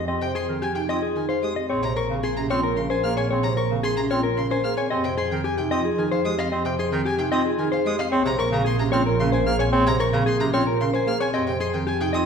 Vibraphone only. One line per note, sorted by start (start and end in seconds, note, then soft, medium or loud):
0.00 0.13 C4 medium
0.09 0.26 G4 medium
0.22 0.39 C5 medium
0.48 0.66 C4 medium
0.62 0.80 G4 medium
0.75 0.93 D#4 medium
0.89 1.06 F4 medium
1.02 1.20 G#4 loud
1.15 1.33 D#4 medium
1.29 1.47 G#4 medium
1.42 1.60 G4 loud
1.55 1.73 C4 medium
1.69 1.87 G#4 medium
1.82 2.00 C5 medium
1.96 2.14 A#4 medium
2.10 2.27 C4 medium
2.23 2.41 G#4 medium
2.36 2.54 C#4 medium
2.50 2.67 F4 medium
2.63 2.81 A#4 loud
2.76 2.94 C#4 medium
2.90 3.07 A#4 medium
3.03 3.21 G#4 loud
3.17 3.34 C4 medium
3.30 3.48 G#4 medium
3.44 3.61 C5 loud
3.57 3.75 A#4 medium
3.71 3.88 C4 medium
3.84 4.01 G#4 loud
3.98 4.15 C#4 medium
4.11 4.28 F4 medium
4.24 4.41 A#4 loud
4.37 4.55 C#4 medium
4.50 4.68 A#4 medium
4.64 4.82 G#4 loud
4.77 4.95 C4 medium
5.04 5.22 C5 loud
5.18 5.35 G#4 medium
5.31 5.49 C4 medium
5.45 5.62 G4 loud
5.58 5.75 D#4 medium
5.72 5.89 F4 medium
5.85 6.02 G#4 loud
5.98 6.15 D#4 medium
6.12 6.29 G#4 medium
6.25 6.42 G4 loud
6.38 6.56 C4 medium
6.51 6.69 G4 medium
6.65 6.83 C5 loud
6.78 6.96 G#4 medium
6.92 7.09 C4 medium
7.05 7.23 G4 loud
7.18 7.36 D#4 loud
7.32 7.49 F4 medium
7.45 7.63 G#4 loud
7.58 7.76 D#4 medium
7.71 7.89 G#4 loud
7.85 8.03 G4 loud
7.98 8.16 C4 medium
8.12 8.30 G#4 medium
8.25 8.43 C5 loud
8.38 8.56 A#4 loud
8.52 8.70 C4 medium
8.65 8.83 G#4 loud
8.79 8.96 C#4 medium
8.92 9.10 F4 medium
9.06 9.23 A#4 loud
9.19 9.37 C#4 medium
9.33 9.50 A#4 loud
9.46 9.64 G#4 loud
9.59 9.77 C4 medium
9.73 9.90 G#4 loud
9.86 10.04 C5 loud
10.00 10.17 A#4 loud
10.13 10.31 C4 loud
10.27 10.44 G#4 loud
10.40 10.57 C#4 medium
10.53 10.71 F4 medium
10.66 10.84 A#4 loud
10.80 10.98 C#4 medium
10.93 11.11 A#4 loud
11.06 11.24 G#4 loud
11.20 11.38 C4 medium
11.33 11.51 G4 medium
11.47 11.64 C5 loud
11.60 11.78 G#4 medium
11.74 11.91 C4 medium
11.87 12.05 G4 loud
12.00 12.18 D#4 medium
12.14 12.26 F4 medium